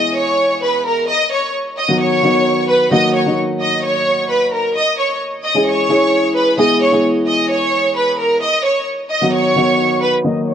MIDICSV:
0, 0, Header, 1, 3, 480
1, 0, Start_track
1, 0, Tempo, 458015
1, 1137, Time_signature, 4, 2, 24, 8
1, 11048, End_track
2, 0, Start_track
2, 0, Title_t, "Violin section"
2, 0, Program_c, 0, 48
2, 0, Note_on_c, 0, 75, 90
2, 0, Note_on_c, 0, 87, 64
2, 143, Note_off_c, 0, 75, 0
2, 148, Note_off_c, 0, 87, 0
2, 176, Note_on_c, 0, 73, 94
2, 185, Note_on_c, 0, 85, 68
2, 628, Note_off_c, 0, 73, 0
2, 632, Note_off_c, 0, 85, 0
2, 657, Note_on_c, 0, 71, 81
2, 665, Note_on_c, 0, 83, 63
2, 864, Note_off_c, 0, 71, 0
2, 868, Note_off_c, 0, 83, 0
2, 896, Note_on_c, 0, 70, 83
2, 905, Note_on_c, 0, 82, 62
2, 1103, Note_off_c, 0, 70, 0
2, 1108, Note_off_c, 0, 82, 0
2, 1137, Note_on_c, 0, 75, 102
2, 1146, Note_on_c, 0, 87, 78
2, 1344, Note_off_c, 0, 75, 0
2, 1349, Note_off_c, 0, 87, 0
2, 1376, Note_on_c, 0, 73, 83
2, 1384, Note_on_c, 0, 85, 65
2, 1583, Note_off_c, 0, 73, 0
2, 1588, Note_off_c, 0, 85, 0
2, 1857, Note_on_c, 0, 75, 82
2, 1866, Note_on_c, 0, 87, 68
2, 2064, Note_off_c, 0, 75, 0
2, 2069, Note_off_c, 0, 87, 0
2, 2096, Note_on_c, 0, 73, 99
2, 2105, Note_on_c, 0, 85, 80
2, 2774, Note_off_c, 0, 73, 0
2, 2779, Note_off_c, 0, 85, 0
2, 2817, Note_on_c, 0, 71, 86
2, 2826, Note_on_c, 0, 83, 69
2, 3024, Note_off_c, 0, 71, 0
2, 3029, Note_off_c, 0, 83, 0
2, 3056, Note_on_c, 0, 75, 99
2, 3065, Note_on_c, 0, 87, 82
2, 3263, Note_off_c, 0, 75, 0
2, 3268, Note_off_c, 0, 87, 0
2, 3297, Note_on_c, 0, 73, 76
2, 3305, Note_on_c, 0, 85, 63
2, 3503, Note_off_c, 0, 73, 0
2, 3508, Note_off_c, 0, 85, 0
2, 3776, Note_on_c, 0, 75, 87
2, 3785, Note_on_c, 0, 87, 68
2, 3983, Note_off_c, 0, 75, 0
2, 3988, Note_off_c, 0, 87, 0
2, 4017, Note_on_c, 0, 73, 90
2, 4025, Note_on_c, 0, 85, 66
2, 4468, Note_off_c, 0, 73, 0
2, 4472, Note_off_c, 0, 85, 0
2, 4497, Note_on_c, 0, 71, 80
2, 4506, Note_on_c, 0, 83, 63
2, 4704, Note_off_c, 0, 71, 0
2, 4709, Note_off_c, 0, 83, 0
2, 4736, Note_on_c, 0, 70, 84
2, 4744, Note_on_c, 0, 82, 63
2, 4943, Note_off_c, 0, 70, 0
2, 4948, Note_off_c, 0, 82, 0
2, 4976, Note_on_c, 0, 75, 103
2, 4985, Note_on_c, 0, 87, 81
2, 5183, Note_off_c, 0, 75, 0
2, 5188, Note_off_c, 0, 87, 0
2, 5218, Note_on_c, 0, 73, 74
2, 5226, Note_on_c, 0, 85, 60
2, 5424, Note_off_c, 0, 73, 0
2, 5429, Note_off_c, 0, 85, 0
2, 5696, Note_on_c, 0, 75, 85
2, 5705, Note_on_c, 0, 87, 64
2, 5903, Note_off_c, 0, 75, 0
2, 5908, Note_off_c, 0, 87, 0
2, 5936, Note_on_c, 0, 73, 96
2, 5944, Note_on_c, 0, 85, 79
2, 6615, Note_off_c, 0, 73, 0
2, 6619, Note_off_c, 0, 85, 0
2, 6656, Note_on_c, 0, 71, 91
2, 6664, Note_on_c, 0, 83, 65
2, 6863, Note_off_c, 0, 71, 0
2, 6868, Note_off_c, 0, 83, 0
2, 6895, Note_on_c, 0, 75, 103
2, 6904, Note_on_c, 0, 87, 80
2, 7103, Note_off_c, 0, 75, 0
2, 7108, Note_off_c, 0, 87, 0
2, 7139, Note_on_c, 0, 73, 86
2, 7147, Note_on_c, 0, 85, 65
2, 7345, Note_off_c, 0, 73, 0
2, 7350, Note_off_c, 0, 85, 0
2, 7616, Note_on_c, 0, 75, 87
2, 7625, Note_on_c, 0, 87, 66
2, 7823, Note_off_c, 0, 75, 0
2, 7828, Note_off_c, 0, 87, 0
2, 7858, Note_on_c, 0, 73, 94
2, 7867, Note_on_c, 0, 85, 68
2, 8309, Note_off_c, 0, 73, 0
2, 8314, Note_off_c, 0, 85, 0
2, 8338, Note_on_c, 0, 71, 82
2, 8346, Note_on_c, 0, 83, 65
2, 8544, Note_off_c, 0, 71, 0
2, 8549, Note_off_c, 0, 83, 0
2, 8577, Note_on_c, 0, 70, 81
2, 8586, Note_on_c, 0, 82, 62
2, 8784, Note_off_c, 0, 70, 0
2, 8789, Note_off_c, 0, 82, 0
2, 8818, Note_on_c, 0, 75, 102
2, 8826, Note_on_c, 0, 87, 80
2, 9024, Note_off_c, 0, 75, 0
2, 9029, Note_off_c, 0, 87, 0
2, 9056, Note_on_c, 0, 73, 80
2, 9064, Note_on_c, 0, 85, 63
2, 9263, Note_off_c, 0, 73, 0
2, 9268, Note_off_c, 0, 85, 0
2, 9536, Note_on_c, 0, 75, 84
2, 9544, Note_on_c, 0, 87, 67
2, 9743, Note_off_c, 0, 75, 0
2, 9748, Note_off_c, 0, 87, 0
2, 9776, Note_on_c, 0, 73, 98
2, 9784, Note_on_c, 0, 85, 83
2, 10454, Note_off_c, 0, 73, 0
2, 10459, Note_off_c, 0, 85, 0
2, 10498, Note_on_c, 0, 71, 86
2, 10506, Note_on_c, 0, 83, 71
2, 10704, Note_off_c, 0, 71, 0
2, 10709, Note_off_c, 0, 83, 0
2, 10737, Note_on_c, 0, 75, 90
2, 10747, Note_on_c, 0, 87, 74
2, 10944, Note_off_c, 0, 75, 0
2, 10949, Note_off_c, 0, 87, 0
2, 10979, Note_on_c, 0, 73, 74
2, 10987, Note_on_c, 0, 85, 59
2, 11048, Note_off_c, 0, 73, 0
2, 11048, Note_off_c, 0, 85, 0
2, 11048, End_track
3, 0, Start_track
3, 0, Title_t, "Grand piano"
3, 0, Program_c, 1, 0
3, 0, Control_c, 1, 64, 127
3, 0, Note_on_c, 1, 52, 86
3, 0, Note_on_c, 1, 56, 71
3, 0, Note_on_c, 1, 59, 72
3, 0, Note_on_c, 1, 64, 75
3, 0, Note_on_c, 1, 68, 88
3, 394, Note_off_c, 1, 52, 0
3, 395, Note_off_c, 1, 56, 0
3, 397, Note_off_c, 1, 59, 0
3, 398, Note_off_c, 1, 64, 0
3, 400, Note_off_c, 1, 68, 0
3, 1151, Control_c, 1, 64, 0
3, 1303, Control_c, 1, 64, 127
3, 1974, Note_on_c, 1, 51, 79
3, 1978, Note_on_c, 1, 54, 74
3, 1980, Note_on_c, 1, 59, 67
3, 1984, Note_on_c, 1, 63, 65
3, 1987, Note_on_c, 1, 66, 84
3, 2283, Note_off_c, 1, 51, 0
3, 2285, Note_off_c, 1, 54, 0
3, 2286, Note_off_c, 1, 59, 0
3, 2288, Note_off_c, 1, 63, 0
3, 2289, Note_off_c, 1, 66, 0
3, 2335, Note_on_c, 1, 51, 80
3, 2338, Note_on_c, 1, 54, 72
3, 2342, Note_on_c, 1, 59, 71
3, 2345, Note_on_c, 1, 63, 67
3, 2348, Note_on_c, 1, 66, 84
3, 2951, Note_off_c, 1, 51, 0
3, 2952, Note_off_c, 1, 54, 0
3, 2954, Note_off_c, 1, 59, 0
3, 2956, Note_off_c, 1, 63, 0
3, 2957, Note_off_c, 1, 66, 0
3, 3050, Note_on_c, 1, 51, 100
3, 3053, Note_on_c, 1, 54, 86
3, 3056, Note_on_c, 1, 58, 83
3, 3059, Note_on_c, 1, 63, 93
3, 3062, Note_on_c, 1, 66, 120
3, 3071, Control_c, 1, 64, 0
3, 3246, Control_c, 1, 64, 127
3, 3361, Note_off_c, 1, 51, 0
3, 3362, Note_off_c, 1, 54, 0
3, 3364, Note_off_c, 1, 58, 0
3, 3365, Note_off_c, 1, 63, 0
3, 3367, Note_off_c, 1, 66, 0
3, 3416, Note_on_c, 1, 51, 79
3, 3420, Note_on_c, 1, 54, 68
3, 3423, Note_on_c, 1, 58, 71
3, 3426, Note_on_c, 1, 63, 73
3, 3429, Note_on_c, 1, 66, 90
3, 4236, Note_off_c, 1, 51, 0
3, 4238, Note_off_c, 1, 54, 0
3, 4240, Note_off_c, 1, 58, 0
3, 4241, Note_off_c, 1, 63, 0
3, 4243, Note_off_c, 1, 66, 0
3, 4992, Control_c, 1, 64, 0
3, 5158, Control_c, 1, 64, 127
3, 5810, Note_on_c, 1, 52, 75
3, 5813, Note_on_c, 1, 56, 70
3, 5816, Note_on_c, 1, 61, 70
3, 5819, Note_on_c, 1, 64, 67
3, 5823, Note_on_c, 1, 68, 94
3, 6121, Note_off_c, 1, 52, 0
3, 6123, Note_off_c, 1, 56, 0
3, 6124, Note_off_c, 1, 61, 0
3, 6126, Note_off_c, 1, 64, 0
3, 6127, Note_off_c, 1, 68, 0
3, 6171, Note_on_c, 1, 52, 80
3, 6175, Note_on_c, 1, 56, 62
3, 6178, Note_on_c, 1, 61, 78
3, 6181, Note_on_c, 1, 64, 72
3, 6184, Note_on_c, 1, 68, 89
3, 6789, Note_off_c, 1, 52, 0
3, 6791, Note_off_c, 1, 56, 0
3, 6792, Note_off_c, 1, 61, 0
3, 6794, Note_off_c, 1, 64, 0
3, 6795, Note_off_c, 1, 68, 0
3, 6889, Note_on_c, 1, 52, 96
3, 6892, Note_on_c, 1, 56, 88
3, 6895, Note_on_c, 1, 59, 93
3, 6899, Note_on_c, 1, 64, 93
3, 6901, Note_on_c, 1, 68, 112
3, 6912, Control_c, 1, 64, 0
3, 7088, Control_c, 1, 64, 127
3, 7200, Note_off_c, 1, 52, 0
3, 7202, Note_off_c, 1, 56, 0
3, 7204, Note_off_c, 1, 59, 0
3, 7205, Note_off_c, 1, 64, 0
3, 7206, Note_off_c, 1, 68, 0
3, 7252, Note_on_c, 1, 52, 85
3, 7255, Note_on_c, 1, 56, 75
3, 7258, Note_on_c, 1, 59, 71
3, 7261, Note_on_c, 1, 64, 72
3, 7264, Note_on_c, 1, 68, 87
3, 8074, Note_off_c, 1, 52, 0
3, 8076, Note_off_c, 1, 56, 0
3, 8077, Note_off_c, 1, 59, 0
3, 8079, Note_off_c, 1, 64, 0
3, 8080, Note_off_c, 1, 68, 0
3, 8830, Control_c, 1, 64, 0
3, 9008, Control_c, 1, 64, 127
3, 9654, Note_on_c, 1, 51, 77
3, 9657, Note_on_c, 1, 54, 74
3, 9660, Note_on_c, 1, 59, 66
3, 9663, Note_on_c, 1, 63, 68
3, 9666, Note_on_c, 1, 66, 83
3, 9963, Note_off_c, 1, 51, 0
3, 9964, Note_off_c, 1, 54, 0
3, 9966, Note_off_c, 1, 59, 0
3, 9967, Note_off_c, 1, 63, 0
3, 9969, Note_off_c, 1, 66, 0
3, 10015, Note_on_c, 1, 51, 77
3, 10018, Note_on_c, 1, 54, 73
3, 10022, Note_on_c, 1, 59, 72
3, 10024, Note_on_c, 1, 63, 69
3, 10028, Note_on_c, 1, 66, 84
3, 10631, Note_off_c, 1, 51, 0
3, 10632, Note_off_c, 1, 54, 0
3, 10634, Note_off_c, 1, 59, 0
3, 10635, Note_off_c, 1, 63, 0
3, 10637, Note_off_c, 1, 66, 0
3, 10732, Note_on_c, 1, 51, 98
3, 10736, Note_on_c, 1, 54, 84
3, 10740, Note_on_c, 1, 58, 78
3, 10745, Note_on_c, 1, 63, 98
3, 10750, Control_c, 1, 64, 0
3, 10905, Control_c, 1, 64, 127
3, 11048, Note_off_c, 1, 51, 0
3, 11048, Note_off_c, 1, 54, 0
3, 11048, Note_off_c, 1, 58, 0
3, 11048, Note_off_c, 1, 63, 0
3, 11048, End_track
0, 0, End_of_file